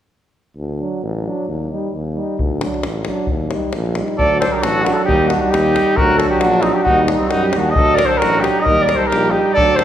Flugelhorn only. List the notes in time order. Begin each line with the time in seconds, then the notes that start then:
4.18 D5
4.40 C5
4.52 A#4
4.62 A4
4.83 F#4
4.93 A4
5.05 G4
5.27 F#4
5.39 F#4
5.50 G4
5.96 A#4
6.18 A4
6.30 G4
6.40 F#4
6.61 D#4
6.73 G4
6.83 F#4
7.03 F#4
7.14 D#4
7.28 F#4
7.43 G4
7.57 F#4
7.70 D#5
7.94 D5
8.05 C5
8.17 A#4
8.40 G4
8.60 D#5
8.82 D5
8.95 C5
9.07 A#4
9.31 G4
9.54 D5
9.76 C5